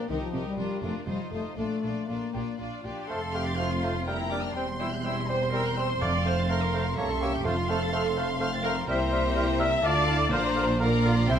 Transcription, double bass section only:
0.10 0.18 C2 medium
0.34 0.42 C2 soft
0.58 0.66 F1 soft
0.83 0.91 F1 soft
1.07 1.15 F1 soft
1.32 1.40 F1 soft
1.58 1.66 A#1 soft
1.84 1.92 A#1 soft
2.09 2.17 A#1 soft
2.35 2.43 A#1 soft
2.60 2.68 A#1 soft
2.85 2.93 A#1 soft
3.11 4.52 F1 soft
4.56 6.02 E1 soft
6.01 6.95 F1 soft
6.98 7.45 C2 medium
7.45 8.86 F1 medium
8.89 9.80 C2 medium
9.84 10.31 D2 medium
10.32 11.29 A#1 medium
11.28 11.39 C2 medium

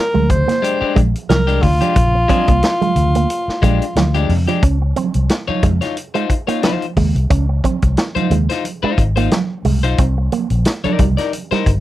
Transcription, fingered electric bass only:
0.15 0.44 D2 medium
0.81 muted fingered electric bass stroke soft
0.96 1.13 A#1 loud
1.30 1.58 C2 medium
1.63 1.79 D2 medium
1.96 2.25 A#1 medium
2.48 2.61 C2 loud
2.96 3.25 D2 medium
3.48 muted fingered electric bass stroke soft
3.63 3.79 A#1 medium
3.96 4.25 D2 medium
4.29 4.46 F2 medium
4.63 4.92 C#2 medium
5.15 5.28 C2 medium
5.48 muted fingered electric bass stroke soft
5.63 5.79 F2 medium
6.97 7.13 D#2 medium
7.15 7.28 C2 medium
7.30 7.59 C#2 medium
7.83 7.96 C2 medium
8.16 muted fingered electric bass stroke soft
8.30 8.47 D#2 medium
8.83 muted fingered electric bass stroke soft
8.98 9.27 G#1 medium
9.65 9.84 C2 medium
9.84 9.97 B1 medium
9.99 10.28 C2 loud
10.51 10.64 A#1 medium
10.85 muted fingered electric bass stroke soft
10.99 11.16 C2 loud
11.51 muted fingered electric bass stroke soft
11.66 11.80 G1 medium

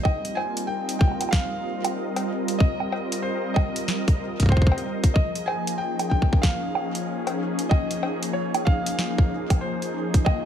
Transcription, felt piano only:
0.03 0.37 D#5 loud
0.35 0.66 G#5 loud
0.67 0.98 G5 loud
0.99 1.33 G5 loud
1.31 2.63 F5 loud
2.58 3.19 D#5 loud
3.22 3.56 C5 medium
3.54 4.54 D#5 loud
4.50 5.11 C5 medium
5.14 5.44 D#5 loud
5.46 5.80 G#5 loud
5.78 6.08 G5 loud
6.10 6.43 G5 loud
6.42 7.74 F5 loud
7.69 8.36 D#5 loud
8.33 8.67 C#5 medium
8.65 9.58 F5 loud
9.61 10.22 C5 medium
10.25 10.45 D#5 loud

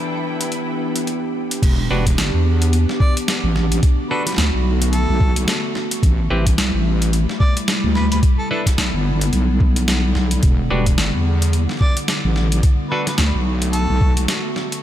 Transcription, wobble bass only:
1.63 1.88 E1 loud
1.90 2.16 E1 loud
2.18 2.31 G1 loud
2.34 2.86 E2 loud
3.44 3.81 A1 loud
4.38 4.51 D2 medium
4.54 5.07 B1 loud
5.09 5.46 B1 loud
6.03 6.29 A1 loud
6.31 6.56 A1 loud
6.58 6.72 C2 loud
6.74 7.27 A1 loud
7.84 8.21 D2 loud
8.78 8.92 B1 loud
8.94 9.31 G1 medium
9.33 10.14 B1 loud
10.15 10.41 B1 loud
10.43 10.69 E1 loud
10.71 10.97 E1 medium
10.98 11.12 G1 medium
11.14 11.67 E2 loud
12.25 12.62 A1 loud
13.19 13.32 D2 loud
13.35 13.87 B1 loud
13.90 14.27 B1 loud

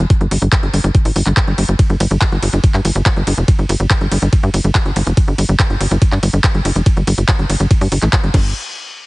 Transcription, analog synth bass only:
0.21 0.27 G1 medium
0.31 0.38 G1 loud
0.42 0.48 G1 medium
0.63 0.69 G1 medium
0.73 0.80 G1 loud
0.84 0.91 G1 loud
1.05 1.12 A1 medium
1.16 1.22 G1 loud
1.26 1.33 G1 medium
1.47 1.54 G1 medium
1.58 1.64 G1 loud
1.69 1.75 G1 medium
1.90 1.96 G1 medium
2.00 2.07 G1 loud
2.11 2.17 G1 medium
2.32 2.38 G1 medium
2.43 2.49 G1 loud
2.53 2.60 G1 medium
2.74 2.81 G2 medium
2.85 2.91 G1 loud
2.95 3.02 G1 medium
3.17 3.23 G1 medium
3.27 3.34 G1 loud
3.38 3.44 F1 medium
3.59 3.65 G1 medium
3.69 3.76 G1 loud
3.80 3.86 G1 medium
4.01 4.07 G1 medium
4.12 4.18 G1 loud
4.22 4.29 G1 medium
4.43 4.50 G2 medium
4.54 4.60 G1 loud
4.64 4.71 G1 loud
4.86 4.92 G1 medium
4.96 5.03 G1 loud
5.07 5.13 F1 medium
5.28 5.34 G1 medium
5.38 5.45 G1 loud
5.49 5.55 G1 loud
5.70 5.76 G1 medium
5.81 5.87 G1 loud
5.91 5.98 G1 medium
6.12 6.19 G2 medium
6.23 6.29 G1 loud
6.33 6.40 G1 loud
6.54 6.61 G1 medium
6.65 6.72 G1 loud
6.76 6.82 F1 medium
6.97 7.03 G1 medium
7.07 7.14 G1 loud
7.18 7.24 G1 medium
7.39 7.45 G1 medium
7.50 7.56 G1 loud
7.60 7.67 G1 medium
7.81 7.88 G2 medium
7.92 7.98 G1 loud
8.02 8.09 A1 loud
8.24 8.30 G1 medium
8.34 8.54 G1 loud

